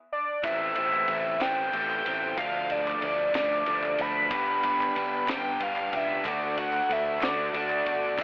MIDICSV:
0, 0, Header, 1, 7, 480
1, 0, Start_track
1, 0, Tempo, 645717
1, 327, Time_signature, 6, 3, 24, 8
1, 6122, End_track
2, 0, Start_track
2, 0, Title_t, "String machine"
2, 0, Program_c, 0, 50
2, 335, Note_on_c, 0, 88, 85
2, 336, Note_on_c, 0, 72, 82
2, 337, Note_on_c, 0, 81, 77
2, 1756, Note_off_c, 0, 88, 0
2, 1757, Note_off_c, 0, 72, 0
2, 1757, Note_off_c, 0, 81, 0
2, 1768, Note_on_c, 0, 69, 82
2, 1770, Note_on_c, 0, 77, 76
2, 1775, Note_on_c, 0, 86, 93
2, 3192, Note_off_c, 0, 69, 0
2, 3193, Note_off_c, 0, 77, 0
2, 3195, Note_off_c, 0, 86, 0
2, 3213, Note_on_c, 0, 79, 75
2, 3214, Note_on_c, 0, 86, 90
2, 3217, Note_on_c, 0, 71, 88
2, 4634, Note_off_c, 0, 79, 0
2, 4636, Note_off_c, 0, 71, 0
2, 4653, Note_on_c, 0, 69, 81
2, 4655, Note_on_c, 0, 78, 79
2, 6059, Note_off_c, 0, 86, 0
2, 6075, Note_off_c, 0, 78, 0
2, 6090, Note_on_c, 0, 84, 93
2, 6122, Note_off_c, 0, 69, 0
2, 6122, Note_off_c, 0, 84, 0
2, 6122, End_track
3, 0, Start_track
3, 0, Title_t, "Analog synth lead"
3, 0, Program_c, 1, 81
3, 93, Note_on_c, 1, 74, 86
3, 313, Note_off_c, 1, 74, 0
3, 330, Note_on_c, 1, 76, 101
3, 1050, Note_on_c, 1, 79, 109
3, 1061, Note_off_c, 1, 76, 0
3, 1765, Note_off_c, 1, 79, 0
3, 1770, Note_on_c, 1, 77, 96
3, 2016, Note_on_c, 1, 74, 99
3, 2027, Note_off_c, 1, 77, 0
3, 2491, Note_off_c, 1, 74, 0
3, 2505, Note_on_c, 1, 74, 94
3, 2982, Note_on_c, 1, 83, 119
3, 2993, Note_off_c, 1, 74, 0
3, 3933, Note_off_c, 1, 83, 0
3, 3936, Note_on_c, 1, 79, 104
3, 4183, Note_on_c, 1, 77, 96
3, 4195, Note_off_c, 1, 79, 0
3, 4430, Note_on_c, 1, 76, 99
3, 4441, Note_off_c, 1, 77, 0
3, 4666, Note_on_c, 1, 74, 88
3, 4678, Note_off_c, 1, 76, 0
3, 4894, Note_on_c, 1, 78, 99
3, 4906, Note_off_c, 1, 74, 0
3, 5146, Note_on_c, 1, 76, 87
3, 5157, Note_off_c, 1, 78, 0
3, 5377, Note_on_c, 1, 74, 90
3, 5388, Note_off_c, 1, 76, 0
3, 5850, Note_off_c, 1, 74, 0
3, 5859, Note_on_c, 1, 74, 85
3, 6114, Note_off_c, 1, 74, 0
3, 6122, End_track
4, 0, Start_track
4, 0, Title_t, "Overdriven electric guitar"
4, 0, Program_c, 2, 29
4, 325, Note_on_c, 2, 52, 90
4, 337, Note_on_c, 2, 57, 90
4, 348, Note_on_c, 2, 60, 107
4, 559, Note_off_c, 2, 60, 0
4, 568, Note_on_c, 2, 60, 71
4, 587, Note_off_c, 2, 57, 0
4, 590, Note_on_c, 2, 57, 62
4, 799, Note_off_c, 2, 52, 0
4, 808, Note_on_c, 2, 52, 71
4, 815, Note_off_c, 2, 57, 0
4, 818, Note_on_c, 2, 57, 75
4, 819, Note_off_c, 2, 60, 0
4, 828, Note_on_c, 2, 60, 71
4, 1039, Note_off_c, 2, 60, 0
4, 1048, Note_on_c, 2, 60, 73
4, 1062, Note_off_c, 2, 57, 0
4, 1071, Note_on_c, 2, 57, 59
4, 1278, Note_off_c, 2, 52, 0
4, 1287, Note_on_c, 2, 52, 76
4, 1288, Note_off_c, 2, 57, 0
4, 1297, Note_on_c, 2, 57, 76
4, 1298, Note_off_c, 2, 60, 0
4, 1307, Note_on_c, 2, 60, 81
4, 1514, Note_off_c, 2, 60, 0
4, 1523, Note_on_c, 2, 60, 64
4, 1536, Note_off_c, 2, 57, 0
4, 1545, Note_on_c, 2, 57, 57
4, 1750, Note_off_c, 2, 60, 0
4, 1752, Note_off_c, 2, 52, 0
4, 1761, Note_off_c, 2, 57, 0
4, 1766, Note_on_c, 2, 53, 91
4, 1778, Note_on_c, 2, 57, 95
4, 1790, Note_on_c, 2, 62, 107
4, 2001, Note_off_c, 2, 62, 0
4, 2004, Note_on_c, 2, 62, 65
4, 2019, Note_off_c, 2, 57, 0
4, 2027, Note_on_c, 2, 57, 59
4, 2239, Note_off_c, 2, 53, 0
4, 2248, Note_on_c, 2, 53, 70
4, 2252, Note_off_c, 2, 57, 0
4, 2260, Note_on_c, 2, 57, 79
4, 2267, Note_off_c, 2, 62, 0
4, 2270, Note_on_c, 2, 62, 77
4, 2485, Note_off_c, 2, 62, 0
4, 2488, Note_on_c, 2, 62, 68
4, 2501, Note_off_c, 2, 57, 0
4, 2510, Note_on_c, 2, 57, 66
4, 2716, Note_off_c, 2, 53, 0
4, 2725, Note_on_c, 2, 53, 70
4, 2726, Note_off_c, 2, 57, 0
4, 2735, Note_on_c, 2, 57, 74
4, 2742, Note_off_c, 2, 62, 0
4, 2745, Note_on_c, 2, 62, 77
4, 2964, Note_off_c, 2, 62, 0
4, 2967, Note_on_c, 2, 62, 73
4, 2980, Note_off_c, 2, 57, 0
4, 2989, Note_on_c, 2, 57, 58
4, 3191, Note_off_c, 2, 53, 0
4, 3201, Note_off_c, 2, 57, 0
4, 3204, Note_on_c, 2, 59, 96
4, 3212, Note_off_c, 2, 62, 0
4, 3215, Note_on_c, 2, 62, 96
4, 3225, Note_on_c, 2, 67, 106
4, 3437, Note_off_c, 2, 67, 0
4, 3446, Note_on_c, 2, 67, 76
4, 3463, Note_off_c, 2, 62, 0
4, 3466, Note_on_c, 2, 62, 59
4, 3673, Note_off_c, 2, 59, 0
4, 3682, Note_on_c, 2, 59, 72
4, 3689, Note_off_c, 2, 62, 0
4, 3692, Note_off_c, 2, 67, 0
4, 3692, Note_on_c, 2, 62, 70
4, 3701, Note_on_c, 2, 67, 86
4, 3914, Note_off_c, 2, 67, 0
4, 3923, Note_on_c, 2, 67, 74
4, 3935, Note_off_c, 2, 62, 0
4, 3943, Note_on_c, 2, 62, 60
4, 4152, Note_off_c, 2, 59, 0
4, 4161, Note_on_c, 2, 59, 79
4, 4165, Note_off_c, 2, 62, 0
4, 4174, Note_on_c, 2, 62, 75
4, 4176, Note_off_c, 2, 67, 0
4, 4185, Note_on_c, 2, 67, 83
4, 4395, Note_off_c, 2, 67, 0
4, 4404, Note_on_c, 2, 67, 74
4, 4418, Note_off_c, 2, 62, 0
4, 4426, Note_on_c, 2, 62, 54
4, 4628, Note_off_c, 2, 59, 0
4, 4630, Note_off_c, 2, 67, 0
4, 4641, Note_off_c, 2, 62, 0
4, 4642, Note_on_c, 2, 57, 98
4, 4653, Note_on_c, 2, 62, 94
4, 4662, Note_on_c, 2, 66, 103
4, 4878, Note_off_c, 2, 66, 0
4, 4887, Note_on_c, 2, 66, 75
4, 4901, Note_off_c, 2, 62, 0
4, 4909, Note_on_c, 2, 62, 55
4, 5128, Note_off_c, 2, 57, 0
4, 5131, Note_on_c, 2, 57, 76
4, 5135, Note_off_c, 2, 62, 0
4, 5143, Note_on_c, 2, 62, 74
4, 5144, Note_off_c, 2, 66, 0
4, 5153, Note_on_c, 2, 66, 81
4, 5352, Note_off_c, 2, 66, 0
4, 5361, Note_on_c, 2, 66, 72
4, 5374, Note_off_c, 2, 62, 0
4, 5383, Note_on_c, 2, 62, 56
4, 5598, Note_off_c, 2, 57, 0
4, 5601, Note_on_c, 2, 57, 69
4, 5604, Note_off_c, 2, 62, 0
4, 5613, Note_on_c, 2, 62, 70
4, 5614, Note_off_c, 2, 66, 0
4, 5623, Note_on_c, 2, 66, 83
4, 5833, Note_off_c, 2, 66, 0
4, 5842, Note_on_c, 2, 66, 70
4, 5854, Note_off_c, 2, 62, 0
4, 5863, Note_on_c, 2, 62, 56
4, 6069, Note_off_c, 2, 66, 0
4, 6078, Note_on_c, 2, 52, 81
4, 6079, Note_off_c, 2, 62, 0
4, 6087, Note_off_c, 2, 57, 0
4, 6090, Note_on_c, 2, 57, 95
4, 6122, Note_off_c, 2, 52, 0
4, 6122, Note_off_c, 2, 57, 0
4, 6122, End_track
5, 0, Start_track
5, 0, Title_t, "Overdriven electric guitar"
5, 0, Program_c, 3, 29
5, 1057, Note_on_c, 3, 52, 68
5, 1271, Note_off_c, 3, 52, 0
5, 2503, Note_on_c, 3, 53, 76
5, 2713, Note_off_c, 3, 53, 0
5, 3936, Note_on_c, 3, 59, 73
5, 4148, Note_off_c, 3, 59, 0
5, 5379, Note_on_c, 3, 57, 70
5, 5592, Note_off_c, 3, 57, 0
5, 6122, End_track
6, 0, Start_track
6, 0, Title_t, "Picked electric bass"
6, 0, Program_c, 4, 34
6, 326, Note_on_c, 4, 33, 93
6, 532, Note_off_c, 4, 33, 0
6, 571, Note_on_c, 4, 33, 87
6, 775, Note_off_c, 4, 33, 0
6, 803, Note_on_c, 4, 33, 81
6, 1010, Note_off_c, 4, 33, 0
6, 1043, Note_on_c, 4, 33, 82
6, 1250, Note_off_c, 4, 33, 0
6, 1289, Note_on_c, 4, 33, 84
6, 1494, Note_off_c, 4, 33, 0
6, 1533, Note_on_c, 4, 33, 76
6, 1736, Note_off_c, 4, 33, 0
6, 1769, Note_on_c, 4, 38, 95
6, 2179, Note_off_c, 4, 38, 0
6, 2248, Note_on_c, 4, 38, 82
6, 2453, Note_off_c, 4, 38, 0
6, 2490, Note_on_c, 4, 38, 79
6, 2694, Note_off_c, 4, 38, 0
6, 2732, Note_on_c, 4, 38, 85
6, 2935, Note_off_c, 4, 38, 0
6, 2969, Note_on_c, 4, 38, 79
6, 3173, Note_off_c, 4, 38, 0
6, 3205, Note_on_c, 4, 31, 99
6, 3411, Note_off_c, 4, 31, 0
6, 3450, Note_on_c, 4, 31, 89
6, 3654, Note_off_c, 4, 31, 0
6, 3692, Note_on_c, 4, 31, 88
6, 3895, Note_off_c, 4, 31, 0
6, 3928, Note_on_c, 4, 31, 86
6, 4132, Note_off_c, 4, 31, 0
6, 4167, Note_on_c, 4, 31, 93
6, 4371, Note_off_c, 4, 31, 0
6, 4407, Note_on_c, 4, 37, 81
6, 4612, Note_off_c, 4, 37, 0
6, 4647, Note_on_c, 4, 38, 91
6, 5057, Note_off_c, 4, 38, 0
6, 5125, Note_on_c, 4, 38, 82
6, 5330, Note_off_c, 4, 38, 0
6, 5363, Note_on_c, 4, 38, 84
6, 5569, Note_off_c, 4, 38, 0
6, 5603, Note_on_c, 4, 38, 85
6, 5809, Note_off_c, 4, 38, 0
6, 5845, Note_on_c, 4, 31, 78
6, 6088, Note_off_c, 4, 31, 0
6, 6088, Note_on_c, 4, 33, 91
6, 6122, Note_off_c, 4, 33, 0
6, 6122, End_track
7, 0, Start_track
7, 0, Title_t, "Drums"
7, 324, Note_on_c, 9, 51, 88
7, 325, Note_on_c, 9, 36, 102
7, 331, Note_on_c, 9, 39, 79
7, 398, Note_off_c, 9, 51, 0
7, 400, Note_off_c, 9, 36, 0
7, 405, Note_off_c, 9, 39, 0
7, 455, Note_on_c, 9, 39, 25
7, 529, Note_off_c, 9, 39, 0
7, 561, Note_on_c, 9, 51, 69
7, 635, Note_off_c, 9, 51, 0
7, 687, Note_on_c, 9, 39, 65
7, 762, Note_off_c, 9, 39, 0
7, 801, Note_on_c, 9, 51, 63
7, 875, Note_off_c, 9, 51, 0
7, 1043, Note_on_c, 9, 51, 91
7, 1049, Note_on_c, 9, 39, 82
7, 1051, Note_on_c, 9, 38, 111
7, 1117, Note_off_c, 9, 51, 0
7, 1124, Note_off_c, 9, 39, 0
7, 1126, Note_off_c, 9, 38, 0
7, 1173, Note_on_c, 9, 39, 27
7, 1248, Note_off_c, 9, 39, 0
7, 1287, Note_on_c, 9, 51, 67
7, 1362, Note_off_c, 9, 51, 0
7, 1412, Note_on_c, 9, 39, 69
7, 1486, Note_off_c, 9, 39, 0
7, 1531, Note_on_c, 9, 51, 64
7, 1535, Note_on_c, 9, 39, 26
7, 1605, Note_off_c, 9, 51, 0
7, 1609, Note_off_c, 9, 39, 0
7, 1766, Note_on_c, 9, 36, 102
7, 1767, Note_on_c, 9, 51, 84
7, 1776, Note_on_c, 9, 39, 89
7, 1840, Note_off_c, 9, 36, 0
7, 1841, Note_off_c, 9, 51, 0
7, 1850, Note_off_c, 9, 39, 0
7, 1896, Note_on_c, 9, 39, 29
7, 1970, Note_off_c, 9, 39, 0
7, 2005, Note_on_c, 9, 51, 73
7, 2079, Note_off_c, 9, 51, 0
7, 2140, Note_on_c, 9, 39, 74
7, 2215, Note_off_c, 9, 39, 0
7, 2245, Note_on_c, 9, 51, 68
7, 2319, Note_off_c, 9, 51, 0
7, 2483, Note_on_c, 9, 51, 98
7, 2491, Note_on_c, 9, 38, 110
7, 2499, Note_on_c, 9, 39, 85
7, 2557, Note_off_c, 9, 51, 0
7, 2565, Note_off_c, 9, 38, 0
7, 2574, Note_off_c, 9, 39, 0
7, 2622, Note_on_c, 9, 39, 28
7, 2696, Note_off_c, 9, 39, 0
7, 2723, Note_on_c, 9, 51, 69
7, 2797, Note_off_c, 9, 51, 0
7, 2851, Note_on_c, 9, 39, 71
7, 2926, Note_off_c, 9, 39, 0
7, 2962, Note_on_c, 9, 51, 74
7, 2974, Note_on_c, 9, 39, 26
7, 3036, Note_off_c, 9, 51, 0
7, 3048, Note_off_c, 9, 39, 0
7, 3202, Note_on_c, 9, 51, 97
7, 3203, Note_on_c, 9, 36, 112
7, 3209, Note_on_c, 9, 39, 85
7, 3276, Note_off_c, 9, 51, 0
7, 3277, Note_off_c, 9, 36, 0
7, 3283, Note_off_c, 9, 39, 0
7, 3335, Note_on_c, 9, 39, 27
7, 3409, Note_off_c, 9, 39, 0
7, 3444, Note_on_c, 9, 51, 78
7, 3518, Note_off_c, 9, 51, 0
7, 3574, Note_on_c, 9, 39, 71
7, 3648, Note_off_c, 9, 39, 0
7, 3687, Note_on_c, 9, 51, 68
7, 3761, Note_off_c, 9, 51, 0
7, 3927, Note_on_c, 9, 39, 96
7, 3927, Note_on_c, 9, 51, 98
7, 3935, Note_on_c, 9, 38, 110
7, 4001, Note_off_c, 9, 39, 0
7, 4001, Note_off_c, 9, 51, 0
7, 4009, Note_off_c, 9, 38, 0
7, 4045, Note_on_c, 9, 39, 29
7, 4119, Note_off_c, 9, 39, 0
7, 4166, Note_on_c, 9, 51, 73
7, 4240, Note_off_c, 9, 51, 0
7, 4284, Note_on_c, 9, 39, 70
7, 4358, Note_off_c, 9, 39, 0
7, 4407, Note_on_c, 9, 39, 28
7, 4407, Note_on_c, 9, 51, 75
7, 4481, Note_off_c, 9, 51, 0
7, 4482, Note_off_c, 9, 39, 0
7, 4646, Note_on_c, 9, 39, 88
7, 4647, Note_on_c, 9, 36, 114
7, 4648, Note_on_c, 9, 51, 89
7, 4720, Note_off_c, 9, 39, 0
7, 4721, Note_off_c, 9, 36, 0
7, 4722, Note_off_c, 9, 51, 0
7, 4888, Note_on_c, 9, 51, 75
7, 4962, Note_off_c, 9, 51, 0
7, 5003, Note_on_c, 9, 39, 73
7, 5078, Note_off_c, 9, 39, 0
7, 5133, Note_on_c, 9, 51, 65
7, 5208, Note_off_c, 9, 51, 0
7, 5363, Note_on_c, 9, 39, 88
7, 5369, Note_on_c, 9, 51, 91
7, 5377, Note_on_c, 9, 38, 111
7, 5437, Note_off_c, 9, 39, 0
7, 5444, Note_off_c, 9, 51, 0
7, 5452, Note_off_c, 9, 38, 0
7, 5487, Note_on_c, 9, 39, 26
7, 5561, Note_off_c, 9, 39, 0
7, 5607, Note_on_c, 9, 51, 67
7, 5682, Note_off_c, 9, 51, 0
7, 5726, Note_on_c, 9, 39, 66
7, 5800, Note_off_c, 9, 39, 0
7, 5845, Note_on_c, 9, 51, 69
7, 5920, Note_off_c, 9, 51, 0
7, 5969, Note_on_c, 9, 39, 27
7, 6044, Note_off_c, 9, 39, 0
7, 6083, Note_on_c, 9, 49, 89
7, 6084, Note_on_c, 9, 39, 81
7, 6085, Note_on_c, 9, 36, 110
7, 6122, Note_off_c, 9, 36, 0
7, 6122, Note_off_c, 9, 39, 0
7, 6122, Note_off_c, 9, 49, 0
7, 6122, End_track
0, 0, End_of_file